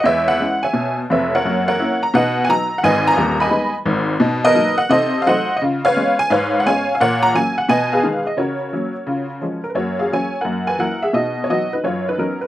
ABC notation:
X:1
M:4/4
L:1/16
Q:"Swing" 1/4=173
K:G#m
V:1 name="Honky-tonk piano"
[Bce]2 f4 [ceg]4 z2 [Bce]2 [Acf]2- | [Acf]2 [Acf]4 a2 [Bdf]3 g a3 f | [Bdg]2 a4 [dgb]4 z6 | [K:F#] z2 [ABd]4 f2 [=A=c_e]3 ^e [c_e_g]3 e |
z2 [Bce]4 g2 [Bce]3 f [ceg]3 e | [Acf]2 a2 g2 f2 [Bdg]2 [GBe]4 d2 | [FAc]12- [FAc]2 A B | [Fc]2 [Ge]2 [cg]3 [Af]3 [Bg]2 [Af]2 [G=e]2 |
[Fd]3 c [Fd]2 [DB]2 [Ec]2 [DB]2 [CA]2 B z |]
V:2 name="Honky-tonk piano" clef=bass
[E,,G,]4 [G,CE]4 B,,4 [^E,,,^E,,]4 | [F,,A,]4 [A,CE]4 [B,,D]4 [F,B,D]4 | [G,,,G,,]4 [D,,,D,,]4 [G,B,D]4 [G,,,G,,]4 | [K:F#] [B,,D]4 [F,A,D]4 [=C,_E]4 [_G,=A,E]4 |
[C,E]4 [G,B,C]4 G,,4 [G,B,C]4 | A,,4 [F,A,C]4 B,,4 [D,G,D]4 | C,4 [F,A,C]4 [C,E]4 [E,G,C]4 | [F,,A,]4 [F,A,C]4 [F,,A,]4 [F,A,=E]4 |
[B,,D]4 [F,B,D]4 F,,4 [F,B,D]4 |]